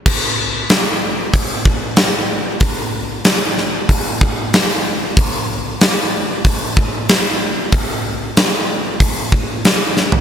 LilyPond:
\new DrumStaff \with { instrumentName = "Drums" } \drummode { \time 4/4 \tempo 4 = 94 <cymc bd>4 <hho sn>4 <hho bd>8 bd8 <hho sn>4 | <hho bd>4 <hho sn>8 sn8 <hho bd>8 bd8 <hho sn>4 | <hho bd>4 <hho sn>4 <hho bd>8 bd8 <hho sn>4 | <hho bd>4 <hho sn>4 <hho bd>8 bd8 <hho sn>8 sn16 tomfh16 | }